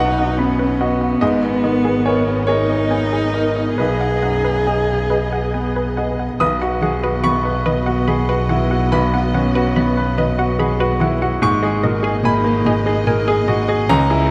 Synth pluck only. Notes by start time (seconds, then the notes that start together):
0.19 F#5
0.39 B5
0.59 B4
0.81 F#5
1.01 F#5
1.22 G#4
1.43 D#5
1.64 D#5
1.85 G#4
2.06 G#5
2.48 G#4
2.70 D#5
2.91 G#5
3.13 G#4
3.34 D#5
3.56 D#5
3.78 B4
4.01 F#5
4.22 F#5
4.44 B4
4.67 G#5
5.10 B4
5.33 F#5
5.54 G#5
5.76 B4
5.97 F#5
6.19 F#5
6.41 B4
6.62 F#5
6.83 F#5
7.04 B4
7.24 B5
7.66 B4
7.86 F#5
8.08 B5
8.29 B4
8.49 F#5
8.71 F#5
8.92 B4
9.14 F#5
9.34 F#5
9.55 B4
9.76 B5
10.18 B4
10.39 F#5
10.60 B5
10.80 B4
11.01 F#5
11.22 F#5
11.42 G#4
11.63 D#5
11.84 D#5
12.04 G#4
12.25 G#5
12.66 G#4
12.87 D#5
13.07 G#5
13.28 G#4
13.48 D#5
13.69 D#5
13.89 C#4
14.10 G#4